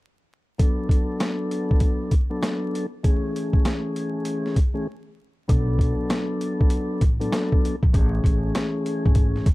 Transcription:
0.58 F#3 B3 D4 A4, kick, closed hi-hat
0.89 kick, closed hi-hat
1.20 snare, closed hi-hat
1.51 closed hi-hat
1.71 kick
1.80 kick, closed hi-hat
2.11 kick, closed hi-hat
2.30 F#3 B3 D4 A4
2.43 snare, closed hi-hat
2.75 closed hi-hat
3.03 E3 A3 C#4 G#4, kick, closed hi-hat
3.36 closed hi-hat
3.53 kick
3.65 snare, closed hi-hat
3.96 closed hi-hat
4.25 closed hi-hat
4.46 snare
4.56 kick, closed hi-hat
4.74 E3 A3 C#4 G#4
5.48 B1 F#3 B3 D4 A4, kick, closed hi-hat
5.79 kick, closed hi-hat
6.10 snare, closed hi-hat
6.41 closed hi-hat
6.61 kick
6.70 closed hi-hat
7.01 A1, kick, closed hi-hat
7.20 F#3 B3 D4 A4, closed hi-hat
7.32 snare, closed hi-hat
7.52 kick
7.65 closed hi-hat
7.83 A#1, kick
7.93 A1 E3 A3 C#4 G#4, kick, closed hi-hat
8.24 A1, kick, closed hi-hat
8.55 snare, closed hi-hat
8.86 closed hi-hat
9.06 G#1, kick
9.15 kick, closed hi-hat
9.36 snare
9.46 F#1, kick, closed hi-hat

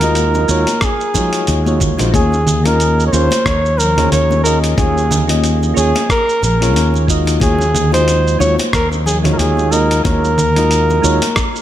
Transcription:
Already playing: D#2 A#4
0.01 G#3 D#4 F4 F#4 D#5, closed hi-hat, high bongo, high conga, shaker
0.15 closed hi-hat, shaker
0.34 high bongo, shaker
0.48 D#2 G#3 D#4 F4 F#4 C#5, shaker
0.67 closed hi-hat, high conga, shaker
0.81 G#4, kick, cross-stick, closed hi-hat, high bongo, shaker
1.01 shaker
1.14 G#3 D#4 F4 F#4 C#5, kick, high bongo, high conga, low conga, shaker
1.33 closed hi-hat, shaker
1.47 D#2, closed hi-hat, shaker
1.65 G#3 D#4 F4 F#4 C#5, high bongo, high conga, shaker
1.80 kick, low conga, shaker
1.97 A#1 G#3 D#4 F4 F#4 C5, closed hi-hat, high bongo, shaker
2.12 D#2 A#3 C#4 F4 G#4 C#5, kick, closed hi-hat, high conga, shaker
2.32 high bongo, shaker
2.47 low conga, shaker
2.64 A#3 C#4 F4 G#4 A#4 D#5, closed hi-hat, high bongo, high conga, shaker
2.80 closed hi-hat, shaker
3.00 shaker
3.07 C#5
3.12 D#2 A#3 C#4 F4 G#4 C5 C#5, high bongo, shaker
3.31 closed hi-hat, high conga, shaker
3.46 D#2 C#5, kick, cross-stick, closed hi-hat, high bongo, shaker
3.66 shaker
3.78 A#4, high conga, low conga, shaker
3.97 A#3 C#4 F4 G#4 C#5, closed hi-hat, high bongo, low conga, shaker
4.12 D#2 C#5, closed hi-hat, shaker
4.31 high bongo, high conga, shaker
4.43 A#3 C#4 F4 G#4 A#4 D#5, shaker
4.64 closed hi-hat, shaker
4.76 D#2 A#3 C#4 F4 G#4 C#5, kick, closed hi-hat, high bongo, high conga, shaker
4.97 shaker
5.11 high bongo, low conga, shaker
5.27 A#3 C#4 F4 G#4 D#5, closed hi-hat, high conga, shaker
5.44 closed hi-hat, shaker
5.63 high bongo, shaker
5.74 D#2 A#3 C#4 F4 G#4 C#5, shaker
5.95 closed hi-hat, high bongo, high conga, shaker
6.10 A#4, kick, cross-stick, closed hi-hat, shaker
6.29 shaker
6.42 A#1 A#4, high bongo, high conga, low conga, shaker
6.60 A#3 C#4 F4 G#4 C#5, closed hi-hat, shaker
6.74 D#2, closed hi-hat, high bongo, shaker
6.94 high conga, shaker
7.07 G#3 D#4 F4 F#4 D#5, kick, shaker
7.26 closed hi-hat, high bongo, shaker
7.40 D#2 G#3 D#4 F4 F#4 G#4 C#5, kick, closed hi-hat, high conga, shaker
7.59 high bongo, shaker
7.75 low conga, shaker
7.91 G#3 D#4 F4 F#4 C5 D#5, closed hi-hat, high conga, shaker
8.08 closed hi-hat, high bongo, shaker
8.27 shaker
8.39 D#2 G#3 D#4 F4 F#4 C#5, high bongo, shaker
8.59 closed hi-hat, high conga, shaker
8.73 D#2 A#4, kick, cross-stick, closed hi-hat, shaker
8.92 high bongo, shaker
9.06 G#4, high conga, low conga, shaker
9.23 G#3 D#4 F4 F#4 C#5, closed hi-hat, high bongo, low conga, shaker
9.33 A#4
9.38 D#2 G#4, closed hi-hat, shaker
9.57 high conga, shaker
9.70 G#3 D#4 F4 F#4 A#4 D#5, high bongo, shaker
9.91 closed hi-hat, shaker
10.03 D#2 G#3 D#4 F4 F#4 A#4 C#5, kick, closed hi-hat, high bongo, high conga, shaker
10.24 shaker
10.38 low conga, shaker
10.55 G#3 D#4 F4 F#4 D#5, closed hi-hat, high bongo, high conga, shaker
10.71 closed hi-hat, shaker
10.90 high bongo, shaker
11.02 D#2 G#3 D#4 F4 F#4 C#5, shaker
11.22 closed hi-hat, high conga, shaker
11.36 kick, cross-stick, closed hi-hat, high bongo, shaker
11.56 shaker

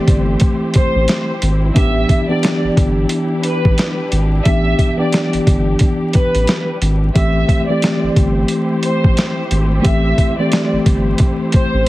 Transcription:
Already playing: E3 A3 C4 E4 G4 C5
0.07 G1, kick, closed hi-hat
0.40 kick, closed hi-hat
0.74 C5, kick, closed hi-hat
0.95 A1
1.08 snare, closed hi-hat
1.42 G#1, closed hi-hat
1.74 A1 E3 B3 D4 G4 E5, kick, closed hi-hat
2.09 kick, closed hi-hat
2.29 E3 B3 D4 G4 D5
2.43 snare, closed hi-hat
2.64 G1
2.77 G1, kick, closed hi-hat
3.09 closed hi-hat
3.43 B4, closed hi-hat
3.65 A1, kick
3.78 snare, closed hi-hat
4.12 G#1, closed hi-hat
4.45 A1 E3 B3 D4 G4 E5, kick, closed hi-hat
4.79 kick, closed hi-hat
4.97 E3 B3 D4 G4 D5
5.13 snare, closed hi-hat
5.33 G1, closed hi-hat
5.47 G1, kick, closed hi-hat
5.79 kick, closed hi-hat
6.13 B4, kick, closed hi-hat
6.35 A1, closed hi-hat
6.47 snare, closed hi-hat
6.81 G#1, closed hi-hat
7.15 A1 E3 A3 C4 E4 G4 C5 E5, kick, closed hi-hat
7.49 kick, closed hi-hat
7.68 E3 A3 C4 G4 D5
7.82 snare, closed hi-hat
8.03 G1
8.16 G1, kick, closed hi-hat
8.48 closed hi-hat
8.83 C5, closed hi-hat
9.04 A1, kick
9.17 snare, closed hi-hat
9.51 G#1, closed hi-hat
9.81 E3 A3 C4 G4 E5
9.85 A1, kick, closed hi-hat
10.18 kick, closed hi-hat
10.39 E3 A3 C4 G4 D5
10.52 snare, closed hi-hat
10.72 G1
10.86 G1, kick, closed hi-hat
11.18 kick, closed hi-hat
11.52 C5, kick, closed hi-hat
11.74 A1

